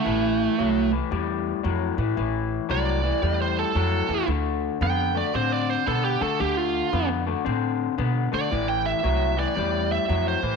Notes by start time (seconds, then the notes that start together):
Already playing: A3
0.05 A1 A2 E3
0.58 C2 A2 F#3
0.92 A2 E3
1.11 E2 A2 G3
1.63 F2 A2 F#3
1.97 A2 E3
2.17 A1 A2 E3
2.69 C2 A2 F#3 D5
3.04 A2 E3
3.22 E2 A2 G3
3.42 C5
3.59 A4
3.75 F2 A2 F#3 A4
4.09 E2 A2 E3
4.28 D2 D3 A3
4.81 F2 D3 B3 G5
5.15 D3 A3 D5
5.34 A2 D3 C4 C5
5.52 D5
5.70 C5
5.87 B2 D3 B3 A4
6.05 G4
6.21 D3 A3 A4
6.40 D2 D3 A3 G4
6.57 F4
6.92 F2 D3 B3
7.27 D3 A3
7.45 A2 D3 C4
7.98 B2 D3 B3
8.32 D3 A3 D5
8.51 A1 A2 E3
8.68 G5
8.86 E5
9.03 C2 A2 F#3
9.37 A2 E3 D5
9.55 E2 A2 G3
9.92 E5
10.08 F2 A2 F#3
10.28 C5
10.43 A2 E3